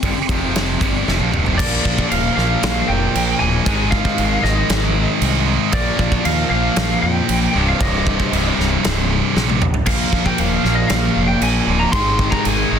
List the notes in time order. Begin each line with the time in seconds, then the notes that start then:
Already playing: C4
0.03 G1 G2 D3, kick, ride
0.17 muted fingered electric bass stroke, muted distorted electric guitar stroke, muted overdriven electric guitar stroke
0.29 F1 F2 C3 F3, kick, ride
0.56 snare, ride
0.81 G1 G2 D3 G3, kick, ride
1.08 F1 F2 C3, snare
1.19 A#1 A#2 F3
1.32 C1 C2 G2, mid tom
1.46 F1 F2 C3, floor tom
1.58 A#1 A#2 F3 D5, kick, crash
1.62 A#3
1.85 A#1, kick
1.98 kick
2.11 D#1 F5, crash
2.35 A#1 F3 A#3 F5, snare
2.40 A#2
2.63 A#1, snare, crash
2.88 F1 G5
3.15 A#1, crash
3.39 D1 A#2 F3 A#3 G#5
3.65 G#1 G#2 D#3, kick, crash
3.69 G#3
3.91 F5, kick
4.05 kick
4.18 G#1, crash
4.42 G#1 G#2 D#3 G#3 D#5, snare
4.69 G#1, snare, crash
5.22 C2, crash
5.46 G#2 D#3 G#3
5.72 A#1 A#2 F3 D5, kick, crash
5.77 A#3
5.99 A#1, kick
6.12 kick
6.25 D#2 F5, crash
6.50 A#1 F3 A#3 F5
6.55 A#2
6.76 A#1, snare, crash
7.02 F2 G5
7.29 A#1, crash
7.55 C1 C2 G2 C3
7.69 F5
7.81 C1 D#5, kick, crash
8.07 kick
8.20 kick
8.31 C1 C2 G2 C3, crash
8.58 C1, snare
8.84 C1, snare, crash
9.36 A#1 C2 G2 C3, snare
9.49 high tom
9.62 mid tom
9.74 floor tom
9.86 A#1 A#2 F3 A#3 F5, kick, crash
10.13 A#1, kick
10.26 G5, kick
10.38 D#1 F5, crash
10.64 A#1 F3 A#3, snare
10.69 A#2
10.75 D#5
10.88 A#1 A#2 F3 F5, snare, crash
10.92 A#3
11.16 F1
11.28 G5
11.41 A#1 G#5, crash
11.67 D1 A#2 F3 A#3
11.79 A#5
11.92 G#1 G#2 D#3 C6, kick, crash
11.97 G#3
12.19 kick
12.31 A#5, kick
12.45 G#1 G#5, crash
12.71 G#1 D#3 G#3
12.75 G#2